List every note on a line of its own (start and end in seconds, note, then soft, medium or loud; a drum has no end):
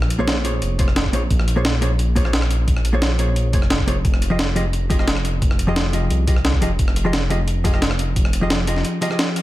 0.00 0.61 A#1 loud
0.00 cross-stick soft
0.10 closed hi-hat medium
0.19 0.42 A#3 medium
0.19 0.43 F4 medium
0.19 0.43 G#4 medium
0.19 0.43 C5 medium
0.19 0.43 C#5 medium
0.28 snare loud
0.28 closed hi-hat medium
0.44 0.77 A#3 medium
0.44 0.77 F4 medium
0.44 0.77 G#4 medium
0.44 0.77 C5 medium
0.44 0.77 C#5 medium
0.44 closed hi-hat loud
0.62 1.12 F1 loud
0.62 closed hi-hat medium
0.78 0.87 A#3 medium
0.78 0.87 F4 medium
0.78 0.87 G#4 medium
0.78 0.87 C5 medium
0.78 0.88 C#5 medium
0.78 kick loud
0.78 closed hi-hat medium
0.88 cross-stick soft
0.96 snare loud
0.96 closed hi-hat medium
1.05 kick medium
1.13 1.29 A#1 medium
1.13 1.21 A#3 medium
1.13 1.21 F4 medium
1.13 1.22 G#4 medium
1.13 1.22 C5 medium
1.13 1.22 C#5 medium
1.13 closed hi-hat medium
1.30 2.66 A#1 loud
1.30 kick loud
1.30 closed hi-hat medium
1.39 cross-stick soft
1.48 closed hi-hat medium
1.56 1.64 A#3 medium
1.56 1.64 F4 medium
1.56 1.64 G#4 medium
1.56 1.64 C5 medium
1.56 1.65 C#5 medium
1.65 snare loud
1.65 closed hi-hat medium
1.81 1.90 A#3 medium
1.81 1.90 F4 medium
1.81 1.90 G#4 medium
1.81 1.90 C5 medium
1.81 1.90 C#5 medium
1.81 closed hi-hat medium
1.99 closed hi-hat medium
2.15 2.23 A#3 loud
2.15 2.23 F4 medium
2.15 2.23 G#4 loud
2.15 2.23 C5 medium
2.15 2.23 C#5 loud
2.15 kick loud
2.15 closed hi-hat medium
2.24 2.32 A#3 medium
2.24 2.33 F4 medium
2.24 2.33 G#4 medium
2.24 2.33 C5 medium
2.24 2.33 C#5 medium
2.24 cross-stick soft
2.33 snare loud
2.33 closed hi-hat medium
2.42 cross-stick medium
2.51 closed hi-hat medium
2.68 3.55 A#1 loud
2.68 kick loud
2.68 closed hi-hat medium
2.77 cross-stick soft
2.85 closed hi-hat medium
2.93 3.17 A#3 medium
2.93 3.17 F4 medium
2.93 3.17 G#4 medium
2.93 3.17 C5 medium
2.93 3.17 C#5 medium
3.02 snare loud
3.02 closed hi-hat medium
3.18 3.51 A#3 medium
3.18 3.51 F4 medium
3.18 3.51 G#4 medium
3.18 3.52 C5 medium
3.18 3.52 C#5 medium
3.18 closed hi-hat medium
3.36 closed hi-hat medium
3.53 4.03 F1 medium
3.53 3.61 A#3 medium
3.53 3.61 F4 medium
3.53 3.62 G#4 medium
3.53 3.62 C5 medium
3.53 3.62 C#5 medium
3.53 kick loud
3.53 closed hi-hat medium
3.62 cross-stick soft
3.70 snare loud
3.70 closed hi-hat medium
3.79 kick medium
3.87 3.95 A#3 medium
3.87 3.96 F4 medium
3.87 3.96 G#4 medium
3.87 3.96 C5 medium
3.87 3.96 C#5 medium
3.87 closed hi-hat medium
4.05 5.41 F1 loud
4.05 kick loud
4.05 closed hi-hat medium
4.14 cross-stick soft
4.22 closed hi-hat medium
4.30 4.38 F3 medium
4.30 4.38 F4 medium
4.30 4.38 G4 medium
4.30 4.39 G#4 medium
4.30 4.39 D#5 medium
4.39 snare loud
4.39 closed hi-hat medium
4.55 4.64 F3 medium
4.55 4.64 F4 medium
4.55 4.64 G4 medium
4.55 4.64 G#4 medium
4.55 4.65 D#5 medium
4.55 closed hi-hat medium
4.73 closed hi-hat medium
4.90 4.97 F3 loud
4.90 4.97 F4 medium
4.90 4.97 G4 medium
4.90 4.97 G#4 medium
4.90 4.98 D#5 loud
4.90 kick loud
4.90 closed hi-hat medium
4.99 5.07 F3 medium
4.99 5.07 F4 medium
4.99 5.07 G4 medium
4.99 5.07 G#4 medium
4.99 5.07 D#5 medium
4.99 cross-stick soft
5.08 snare loud
5.08 closed hi-hat medium
5.16 cross-stick medium
5.25 closed hi-hat medium
5.42 6.09 F1 loud
5.42 kick loud
5.42 closed hi-hat medium
5.51 cross-stick soft
5.59 closed hi-hat medium
5.67 5.91 F3 medium
5.67 5.91 F4 medium
5.67 5.91 G4 medium
5.67 5.91 G#4 medium
5.67 5.92 D#5 medium
5.76 snare loud
5.76 closed hi-hat medium
5.93 6.25 F3 medium
5.93 6.26 F4 medium
5.93 6.26 G4 medium
5.93 6.26 G#4 medium
5.93 6.26 D#5 medium
5.93 closed hi-hat medium
6.10 6.61 C2 loud
6.10 closed hi-hat medium
6.27 6.36 F3 medium
6.27 6.36 F4 medium
6.27 6.36 G4 medium
6.27 6.36 G#4 medium
6.27 6.36 D#5 medium
6.27 kick loud
6.27 closed hi-hat medium
6.36 cross-stick soft
6.45 snare loud
6.45 closed hi-hat medium
6.54 kick medium
6.61 6.77 F1 medium
6.61 6.70 F3 medium
6.61 6.70 F4 medium
6.61 6.70 G4 medium
6.61 6.70 G#4 medium
6.61 6.71 D#5 medium
6.61 closed hi-hat medium
6.79 8.15 F1 loud
6.79 kick loud
6.79 closed hi-hat medium
6.88 cross-stick soft
6.96 closed hi-hat medium
7.05 7.12 F3 medium
7.05 7.13 F4 medium
7.05 7.13 G4 medium
7.05 7.13 G#4 medium
7.05 7.13 D#5 medium
7.13 snare loud
7.13 closed hi-hat medium
7.30 7.38 F3 medium
7.30 7.38 F4 medium
7.30 7.39 G4 medium
7.30 7.39 G#4 medium
7.30 7.39 D#5 loud
7.30 closed hi-hat medium
7.48 closed hi-hat medium
7.64 7.71 F3 loud
7.64 7.71 F4 medium
7.64 7.71 G4 medium
7.64 7.72 G#4 medium
7.64 7.72 D#5 medium
7.64 kick loud
7.64 closed hi-hat loud
7.73 7.81 F3 medium
7.73 7.81 F4 medium
7.73 7.81 G4 medium
7.73 7.81 G#4 medium
7.73 7.82 D#5 medium
7.73 cross-stick soft
7.82 snare loud
7.82 closed hi-hat medium
7.91 cross-stick medium
7.99 closed hi-hat medium
8.16 8.83 F1 loud
8.16 kick loud
8.16 closed hi-hat medium
8.25 cross-stick soft
8.33 closed hi-hat loud
8.41 8.65 F3 medium
8.41 8.66 F4 medium
8.41 8.66 G4 medium
8.41 8.66 G#4 medium
8.41 8.66 D#5 medium
8.50 snare loud
8.50 closed hi-hat medium
8.67 9.00 F3 medium
8.67 9.00 F4 medium
8.67 9.00 G4 medium
8.67 9.00 G#4 medium
8.67 9.00 D#5 medium
8.67 closed hi-hat loud
8.76 snare soft
8.85 closed hi-hat medium
9.01 9.08 F3 loud
9.01 9.08 F4 medium
9.01 9.09 G4 medium
9.01 9.09 G#4 medium
9.01 9.09 D#5 loud
9.01 closed hi-hat loud
9.09 9.42 F3 medium
9.09 9.42 F4 medium
9.09 9.42 G4 medium
9.09 9.42 G#4 medium
9.09 9.42 D#5 medium
9.09 cross-stick soft
9.19 snare loud
9.19 closed hi-hat medium
9.36 cross-stick soft
9.36 closed hi-hat loud